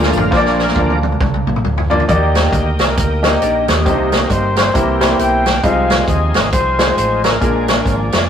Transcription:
0.00 0.10 D2 loud
0.00 0.30 D3 medium
0.00 0.30 F3 medium
0.00 0.30 G#3 medium
0.00 0.17 A#3 medium
0.00 0.30 A#3 medium
0.00 0.17 D4 medium
0.00 0.17 F4 medium
0.00 0.30 F4 medium
0.00 0.32 F4 medium
0.00 0.17 D5 loud
0.00 snare medium
0.13 0.29 A1 loud
0.13 floor tom loud
0.13 tambourine medium
0.31 0.70 A#1 loud
0.31 0.98 A#2 medium
0.31 2.07 D3 medium
0.31 0.99 F3 medium
0.31 2.07 F3 medium
0.31 0.87 A#3 medium
0.31 0.99 A#3 medium
0.31 2.07 A#3 medium
0.31 0.87 D4 medium
0.31 0.99 D4 medium
0.31 2.07 D4 medium
0.31 0.87 F4 medium
0.31 0.38 C5 medium
0.31 kick loud
0.31 snare soft
0.36 0.90 D5 medium
0.46 snare medium
0.59 snare medium
0.68 snare medium
0.76 1.14 D2 medium
0.76 kick medium
0.76 high tom medium
0.90 high tom medium
1.03 high tom medium
1.12 mid tom medium
1.21 1.43 C2 medium
1.21 kick loud
1.21 mid tom medium
1.34 mid tom medium
1.47 1.62 A#1 loud
1.47 mid tom medium
1.56 mid tom medium
1.64 2.02 D2 medium
1.64 mid tom medium
1.78 floor tom medium
1.90 2.01 A#3 medium
1.90 2.02 D4 medium
1.90 2.02 F4 medium
1.90 2.01 D5 medium
1.90 floor tom loud
2.00 floor tom medium
2.08 2.46 D#2 loud
2.08 2.76 D#3 medium
2.08 2.65 A#3 medium
2.08 3.83 A#3 medium
2.08 2.65 D#4 medium
2.08 3.83 D#4 medium
2.08 2.15 F#4 medium
2.08 3.83 G4 medium
2.08 2.65 D5 medium
2.08 kick loud
2.08 closed hi-hat medium
2.14 2.67 G4 medium
2.35 snare loud
2.35 closed hi-hat medium
2.52 2.75 D2 loud
2.52 kick medium
2.52 closed hi-hat medium
2.79 2.95 C2 medium
2.79 2.88 G#4 medium
2.79 snare loud
2.79 closed hi-hat medium
2.89 2.97 A#4 medium
2.97 3.35 D2 medium
2.97 3.39 A#4 medium
2.97 kick loud
2.97 closed hi-hat loud
3.23 3.63 A#3 medium
3.23 3.63 D#4 medium
3.23 3.41 D#4 medium
3.23 3.63 G4 medium
3.23 3.41 C5 medium
3.23 3.63 D#5 medium
3.23 snare loud
3.23 closed hi-hat medium
3.42 3.65 A#1 medium
3.42 3.67 D4 medium
3.42 3.67 A#4 medium
3.42 3.54 D5 medium
3.42 closed hi-hat medium
3.68 3.88 D#2 medium
3.68 4.11 A#3 medium
3.68 4.11 G4 medium
3.68 4.32 D#5 medium
3.68 snare loud
3.68 closed hi-hat medium
3.85 4.24 C2 loud
3.85 4.53 C3 medium
3.85 4.73 D#3 medium
3.85 4.73 A#3 medium
3.85 4.42 A#3 medium
3.85 4.73 C4 medium
3.85 3.92 D4 soft
3.85 4.42 G4 medium
3.85 4.73 G4 medium
3.85 4.42 C5 medium
3.85 kick medium
3.85 closed hi-hat medium
3.91 4.45 D#4 medium
4.12 snare loud
4.12 closed hi-hat medium
4.30 4.68 G1 medium
4.30 4.57 C5 medium
4.30 kick medium
4.30 closed hi-hat medium
4.56 4.77 C5 medium
4.56 snare loud
4.56 closed hi-hat medium
4.74 5.13 C2 loud
4.74 5.42 C3 medium
4.74 5.62 E3 medium
4.74 4.96 A#3 medium
4.74 5.62 A#3 medium
4.74 5.62 C4 medium
4.74 4.96 E4 medium
4.74 4.96 G4 medium
4.74 5.62 G4 medium
4.74 5.19 A#4 medium
4.74 4.96 C5 medium
4.74 kick loud
4.74 closed hi-hat medium
5.00 5.41 A#3 medium
5.00 5.41 E4 medium
5.00 5.41 G4 medium
5.00 5.41 C5 medium
5.00 snare loud
5.00 closed hi-hat medium
5.19 5.57 B1 medium
5.19 5.65 G5 medium
5.19 closed hi-hat medium
5.46 snare loud
5.46 closed hi-hat medium
5.63 6.02 C2 loud
5.63 6.31 C3 medium
5.63 7.38 F3 medium
5.63 6.20 G#3 medium
5.63 7.38 C4 medium
5.63 6.20 D#4 medium
5.63 7.38 D#4 medium
5.63 6.20 F4 medium
5.63 7.38 G#4 medium
5.63 6.20 C5 medium
5.63 6.08 F5 loud
5.63 kick medium
5.63 closed hi-hat medium
5.90 snare loud
5.90 closed hi-hat medium
6.08 6.30 D#2 medium
6.08 6.49 D#5 medium
6.08 kick medium
6.08 closed hi-hat medium
6.34 6.50 G#1 medium
6.34 snare loud
6.34 closed hi-hat medium
6.52 6.91 C2 medium
6.52 6.94 C5 medium
6.52 kick loud
6.52 closed hi-hat medium
6.79 7.19 G#3 medium
6.79 7.19 D#4 medium
6.79 7.19 F4 medium
6.79 7.19 C5 medium
6.79 snare loud
6.79 closed hi-hat medium
6.97 7.35 A1 medium
6.97 7.22 C5 medium
6.97 closed hi-hat medium
7.24 7.60 A#4 medium
7.24 snare loud
7.24 closed hi-hat medium
7.41 7.79 A#1 loud
7.41 8.08 A#2 medium
7.41 8.28 F3 medium
7.41 7.97 G#3 medium
7.41 8.28 A#3 medium
7.41 7.97 D4 medium
7.41 8.28 D4 medium
7.41 7.97 F4 medium
7.41 8.28 G#4 medium
7.41 7.97 A#4 medium
7.41 kick medium
7.41 closed hi-hat medium
7.68 snare loud
7.68 closed hi-hat medium
7.86 8.08 G#1 medium
7.86 8.29 D5 medium
7.86 kick medium
7.86 closed hi-hat medium
8.12 8.28 F1 medium
8.12 snare loud
8.12 closed hi-hat medium

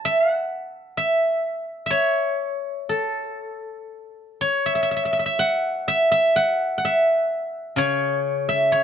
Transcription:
0.00 1.02 A5 loud
0.05 0.31 E5 loud
0.31 1.65 F#5 loud
0.97 1.86 E5 medium
1.86 3.58 E5 medium
1.91 3.81 C#5 medium
2.89 5.09 A4 medium
4.41 6.32 C#5 medium
4.66 4.75 E5 medium
4.75 4.82 E5 medium
4.83 4.91 E5 medium
4.91 4.96 E5 medium
4.97 5.05 E5 medium
5.05 5.12 E5 soft
5.13 5.19 E5 medium
5.19 5.25 E5 medium
5.26 5.87 E5 medium
5.39 6.36 F#5 medium
5.88 6.11 E5 loud
6.12 6.84 E5 medium
6.36 6.77 F#5 loud
6.78 8.38 F#5 medium
6.85 8.48 E5 medium
7.76 8.84 C#3 medium
7.76 8.72 C#5 loud
8.49 8.84 E5 medium
8.72 8.84 C#5 medium

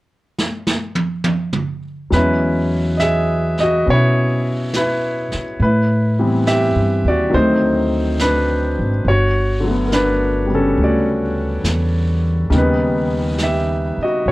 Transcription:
0.39 snare soft
0.67 snare medium
0.95 high tom medium
1.24 high tom medium
1.52 mid tom medium
2.10 3.82 E2 medium
2.10 5.59 F#3 soft
2.10 5.59 G#3 soft
2.10 3.84 B3 soft
2.10 2.98 B4 medium
2.10 brush sweep soft
2.10 snare soft
2.15 3.85 C#4 soft
2.15 2.93 E4 medium
2.97 3.01 D#5 soft
2.97 3.61 E5 medium
2.97 snare soft
2.97 hi-hat pedal soft
3.02 3.56 G#4 medium
3.57 3.85 D#5 medium
3.57 snare soft
3.63 3.86 F#4 medium
3.86 5.29 B2 medium
3.86 5.59 B3 soft
3.86 5.60 C#4 soft
3.86 5.61 D#5 soft
3.86 brush sweep soft
3.90 4.72 E4 medium
3.90 4.78 C#5 medium
4.73 5.44 B4 medium
4.73 snare soft
4.73 hi-hat pedal medium
4.78 5.45 E4 medium
5.32 muted upright bass stroke soft
5.32 snare soft
5.60 6.72 A2 medium
5.60 6.51 B4 medium
5.60 brush sweep soft
5.65 6.45 E4 medium
6.20 7.33 E3 soft
6.20 7.33 G3 soft
6.20 7.34 B3 soft
6.20 7.34 C4 soft
6.47 7.03 G4 medium
6.47 7.08 E5 medium
6.47 snare soft
6.47 hi-hat pedal soft
6.76 7.02 G2 soft
7.05 7.31 D#2 medium
7.05 7.35 D5 medium
7.09 7.33 F#4 medium
7.30 8.75 D2 medium
7.30 9.04 D#3 soft
7.30 9.05 F#3 soft
7.30 9.06 A3 soft
7.34 9.07 C4 soft
7.34 8.16 D#4 medium
7.34 8.23 C5 medium
7.34 brush sweep soft
8.19 8.89 D4 medium
8.19 8.89 B4 medium
8.19 snare soft
8.19 hi-hat pedal medium
8.79 9.04 G#1 medium
9.05 10.74 G1 medium
9.05 9.85 C#5 medium
9.05 brush sweep soft
9.09 9.86 F#4 medium
9.60 12.50 D3 soft
9.60 12.52 F#3 soft
9.67 12.54 A3 soft
9.67 10.46 B3 soft
9.88 9.92 A#4 soft
9.92 10.48 D4 medium
9.92 10.48 B4 medium
9.92 snare soft
9.92 hi-hat pedal soft
10.46 12.48 C#3 soft
10.46 12.51 G3 soft
10.46 12.51 B3 soft
10.55 10.78 C#4 medium
10.55 10.81 A4 medium
10.78 11.61 D2 medium
10.78 brush sweep soft
10.83 12.24 F#4 medium
10.83 12.24 D5 medium
11.64 12.48 E2 medium
11.64 snare soft
11.64 hi-hat pedal medium
12.50 13.94 D#2 medium
12.50 14.32 C#3 soft
12.50 14.32 D#3 soft
12.50 14.32 G3 soft
12.50 brush sweep soft
12.50 snare soft
12.54 14.32 B3 medium
12.54 13.38 D#4 medium
12.54 13.44 B4 medium
13.38 snare soft
13.38 hi-hat pedal soft
13.43 13.98 G4 medium
13.43 14.03 E5 medium
13.97 muted upright bass stroke soft
14.03 14.27 F#4 medium
14.03 14.29 D#5 medium
14.26 14.32 B1 medium
14.26 14.32 C#5 medium
14.26 brush sweep soft

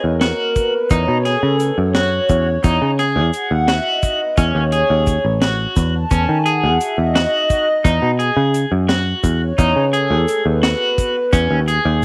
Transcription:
0.04 0.31 E2 medium
0.21 0.73 F#4 medium
0.21 snare medium
0.21 closed hi-hat medium
0.56 kick medium
0.56 closed hi-hat medium
0.56 shaker medium
0.90 1.04 E2 medium
0.90 1.17 D#4 medium
0.90 kick loud
0.90 closed hi-hat medium
0.90 shaker medium
1.08 1.35 B2 medium
1.25 1.77 G#4 medium
1.25 snare soft
1.25 closed hi-hat medium
1.43 1.70 C#3 medium
1.60 closed hi-hat medium
1.60 shaker medium
1.78 2.19 F#2 medium
1.95 2.47 F#4 medium
1.95 snare medium
1.95 closed hi-hat medium
2.29 2.57 E2 medium
2.29 kick medium
2.29 closed hi-hat medium
2.29 shaker medium
2.64 2.78 E2 medium
2.64 2.90 D#4 medium
2.64 kick loud
2.64 closed hi-hat medium
2.64 shaker medium
2.82 3.17 C#3 medium
2.99 3.51 G#4 medium
2.99 snare soft
2.99 closed hi-hat medium
3.16 3.30 E2 medium
3.33 closed hi-hat medium
3.33 shaker medium
3.51 3.78 D#2 medium
3.68 4.21 F#4 medium
3.68 snare medium
3.68 closed hi-hat medium
4.03 kick medium
4.03 closed hi-hat medium
4.03 shaker medium
4.37 4.51 E2 medium
4.37 4.64 C#4 medium
4.37 kick loud
4.37 closed hi-hat medium
4.37 shaker medium
4.55 4.82 D#2 medium
4.72 5.24 G#4 medium
4.72 closed hi-hat medium
4.90 5.17 D#2 medium
5.07 kick medium
5.07 closed hi-hat medium
5.07 shaker medium
5.25 5.65 A1 medium
5.42 5.94 F#4 medium
5.42 snare loud
5.42 closed hi-hat medium
5.42 shaker soft
5.76 6.04 E2 medium
5.76 kick medium
5.76 snare soft
5.76 closed hi-hat medium
5.76 shaker medium
6.11 6.25 E2 medium
6.11 6.37 C#4 medium
6.11 kick loud
6.11 closed hi-hat medium
6.11 shaker medium
6.29 6.65 D#3 medium
6.46 6.98 G#4 medium
6.46 closed hi-hat medium
6.64 6.77 E2 medium
6.81 closed hi-hat medium
6.81 shaker medium
6.98 7.25 E2 medium
7.15 7.67 F#4 medium
7.15 snare loud
7.15 closed hi-hat medium
7.50 kick medium
7.50 closed hi-hat medium
7.50 shaker medium
7.84 7.99 E2 medium
7.84 8.11 D#4 medium
7.84 kick loud
7.84 closed hi-hat medium
7.84 shaker medium
8.02 8.30 B2 medium
8.19 8.71 G#4 medium
8.19 closed hi-hat medium
8.37 8.64 C#3 medium
8.54 closed hi-hat medium
8.54 shaker medium
8.72 9.13 F#2 medium
8.88 9.41 F#4 medium
8.88 snare loud
8.88 closed hi-hat medium
9.24 9.51 E2 medium
9.24 kick medium
9.24 closed hi-hat medium
9.24 shaker medium
9.58 9.72 E2 loud
9.58 9.84 D#4 medium
9.58 kick loud
9.58 closed hi-hat medium
9.58 shaker medium
9.76 10.12 C#3 medium
9.93 10.46 G#4 medium
9.93 closed hi-hat medium
10.11 10.24 E2 medium
10.28 closed hi-hat medium
10.28 shaker medium
10.46 10.73 D#2 medium
10.63 11.16 F#4 medium
10.63 snare loud
10.63 closed hi-hat medium
10.98 kick medium
10.98 closed hi-hat medium
10.98 shaker medium
11.33 11.47 E2 loud
11.33 11.59 C#4 medium
11.33 kick loud
11.33 closed hi-hat medium
11.33 shaker medium
11.51 11.78 D#2 medium
11.68 12.05 G#4 medium
11.68 closed hi-hat medium
11.68 shaker soft
11.85 12.05 D#2 loud

